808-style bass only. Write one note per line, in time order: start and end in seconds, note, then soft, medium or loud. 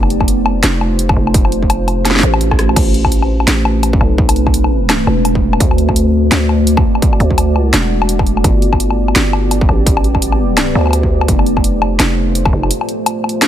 0.00 0.62 F1 loud
0.63 1.15 F1 medium
1.17 2.22 F1 loud
2.23 2.75 A1 loud
2.76 3.46 A1 loud
3.47 3.99 A1 medium
4.01 5.06 B1 loud
5.07 5.59 E1 loud
5.60 6.30 D2 loud
6.31 6.84 D2 medium
7.20 7.72 D2 loud
7.73 8.43 E1 loud
8.44 9.14 G1 loud
9.16 9.68 G1 medium
9.69 10.74 A1 loud
10.75 11.27 D2 loud
11.28 11.98 F1 loud
12.00 12.52 F1 medium
12.53 12.71 F1 loud